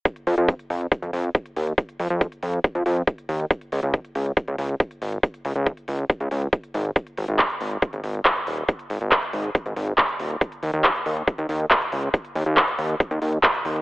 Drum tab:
HH |xxoxxxoxxxoxxxox|xxoxxxoxxxoxxxox|xxoxxxoxxxoxxxox|xxoxxxoxxxoxxxox|
CP |----------------|----------------|----------------|----------------|
BD |o---o---o---o---|o---o---o---o---|o---o---o---o---|o---o---o---o---|

HH |xxoxxxoxxxoxxxox|xxoxxxoxxxoxxxox|xxoxxxoxxxoxxxox|xxoxxxoxxxoxxxox|
CP |----x-------x---|----x-------x---|----x-------x---|----x-------x---|
BD |o---o---o---o---|o---o---o---o---|o---o---o---o---|o---o---o---o---|